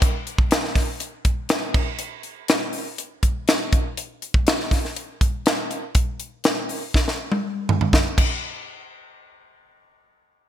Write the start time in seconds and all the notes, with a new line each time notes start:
0.02 kick, closed hi-hat
0.27 closed hi-hat
0.38 kick
0.51 snare, closed hi-hat
0.65 snare
0.75 kick, snare, open hi-hat
1.00 closed hi-hat
1.25 kick, closed hi-hat
1.49 snare, closed hi-hat
1.74 kick, crash
1.99 closed hi-hat
2.23 closed hi-hat
2.48 snare, closed hi-hat
2.73 open hi-hat
2.98 closed hi-hat
3.23 kick, closed hi-hat
3.48 snare, closed hi-hat
3.72 kick, closed hi-hat
3.97 closed hi-hat
4.22 closed hi-hat
4.34 kick
4.47 snare, closed hi-hat
4.60 snare
4.71 kick, snare, open hi-hat
4.85 snare
4.96 closed hi-hat
5.21 kick, closed hi-hat
5.46 snare, closed hi-hat
5.71 closed hi-hat
5.95 kick, closed hi-hat
6.20 closed hi-hat
6.44 snare, closed hi-hat
6.69 open hi-hat
6.94 kick, snare
7.08 snare
7.32 high tom
7.69 floor tom
7.81 floor tom
7.93 kick, snare
8.18 kick, crash